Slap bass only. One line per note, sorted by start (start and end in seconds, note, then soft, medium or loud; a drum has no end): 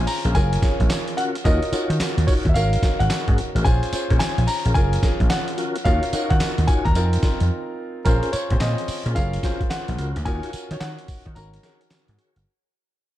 0.25 0.32 A#1 medium
0.35 0.56 F#1 loud
0.80 0.87 A#1 medium
1.45 1.58 D#2 loud
1.72 muted slap bass stroke soft
1.90 1.97 D#3 medium
2.00 muted slap bass stroke medium
2.18 2.25 D#2 loud
2.45 2.53 D#2 loud
2.55 2.76 G#1 loud
2.83 muted slap bass stroke medium
3.00 3.08 G#1 medium
3.28 3.35 G#2 loud
3.55 3.63 A1 medium
3.65 3.79 A#1 loud
3.93 muted slap bass stroke medium
4.11 4.18 A#2 loud
4.20 muted slap bass stroke soft
4.38 4.45 A#1 loud
4.65 4.75 A#1 loud
4.75 4.96 F#1 loud
5.03 muted slap bass stroke medium
5.20 5.28 A#1 loud
5.85 5.99 D#2 loud
6.13 muted slap bass stroke medium
6.31 6.38 D#3 medium
6.41 muted slap bass stroke medium
6.58 6.66 D#2 loud
6.86 6.93 D#2 loud
6.95 7.16 F2 loud
7.23 muted slap bass stroke soft
7.41 7.48 F2 medium
8.06 8.19 A#1 loud
8.33 muted slap bass stroke soft
8.51 8.58 A#2 loud
8.61 8.74 A#2 loud
8.88 muted slap bass stroke soft
9.06 9.13 A#2 loud
9.16 9.37 F#1 loud
9.88 9.96 A#1 medium
9.99 10.12 C#2 loud
10.16 10.24 D2 medium
10.26 10.39 D#2 loud
10.54 muted slap bass stroke medium
10.71 10.78 D#3 medium
10.81 10.94 D#3 loud
11.09 muted slap bass stroke soft
11.26 11.34 D#3 medium
11.36 11.57 G#1 loud
12.09 12.16 G#2 loud
12.36 12.44 G1 medium